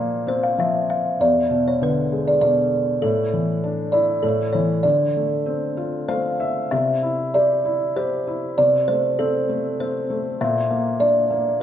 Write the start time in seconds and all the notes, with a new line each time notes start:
Already playing: A#2 F3 A#3
0.27 C4 C5
0.43 F5
0.58 F3 E5
0.90 F5
1.20 E2 D5
1.50 B2
1.68 C#5
1.81 D3 B4
2.12 G#3
2.28 D5
2.41 B2 D5
3.02 A2 A4
3.33 E3
3.64 D4
3.92 E4 D5
4.23 A2 A4
4.53 E3 C#5
4.83 D3 D5
5.16 A3
5.46 C4
5.77 F4
6.08 A3 C5 F5
6.40 E5
6.71 C3 E5
7.03 E4
7.34 G4 D5
7.65 E4
7.96 G4 C5
8.27 E4
8.58 C3 D5
8.88 A3 C5
9.19 C4 A4
9.49 A3
9.80 C4 C5
10.10 A3
10.41 A#2 E5
10.70 A#3
10.99 D4 D5
11.30 A#3